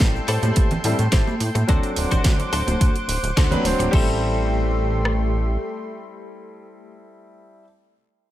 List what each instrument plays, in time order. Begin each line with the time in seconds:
Already playing: grand piano G3 C4 E4 A4, analog synth pad A4 G5 C6
0.00 analog synth bass A1, kick, snare, closed hi-hat, shaker
0.15 muted clean electric guitar stroke, shaker
0.28 analog synth bass A2, clean electric guitar E4 G4 A4 C5, open hi-hat
0.42 analog synth bass A2, closed hi-hat, high conga, shaker
0.56 analog synth bass A1, kick, closed hi-hat, shaker
0.71 closed hi-hat, low conga, shaker
0.84 analog synth bass A2, grand piano G3 C4 E4 A4, open hi-hat
0.99 analog synth bass A2, closed hi-hat, shaker
1.12 analog synth bass A1, clean electric guitar E4 G4 A4 C5, kick, snare, closed hi-hat, shaker
1.27 high conga, shaker
1.40 analog synth bass A2, open hi-hat
1.55 analog synth bass A2, muted clean electric guitar stroke, closed hi-hat, high conga, shaker
1.67 analog synth bass D2, grand piano F#3 C4 D4 A4, clean electric guitar D4 F#4 A4 C5, analog synth pad C5 F#5 D6, kick, closed hi-hat, shaker
1.83 closed hi-hat, shaker
1.96 analog synth bass D1, open hi-hat
2.11 analog synth bass D1, clean electric guitar D4 F#4 A4 C5, kick, closed hi-hat, low conga, shaker
2.24 analog synth bass D2, kick, snare, closed hi-hat, shaker
2.39 muted clean electric guitar stroke, closed hi-hat, shaker
2.53 analog synth bass D1, clean electric guitar D4 F#4 A4 C5, open hi-hat
2.67 analog synth bass D1, closed hi-hat, high conga, shaker
2.81 analog synth bass D2, kick, closed hi-hat, shaker
2.95 closed hi-hat, shaker
3.08 analog synth bass D1, open hi-hat
3.23 analog synth bass D1, closed hi-hat, shaker
3.37 analog synth bass D2, clean electric guitar D4 F#4 A4 C5, kick, snare, closed hi-hat, shaker
3.51 grand piano F#3 C4 D4 B4, closed hi-hat, high conga, low conga, shaker
3.64 analog synth bass D1, grand piano F#3 C4 D4 C5, open hi-hat
3.79 analog synth bass D1, muted clean electric guitar stroke, closed hi-hat, high conga, shaker
3.91 analog synth bass A1, grand piano G3 C4 E4 A4, analog synth pad A3 G4 C6, clean electric guitar G4 A4 C5, kick, crash
5.05 cross-stick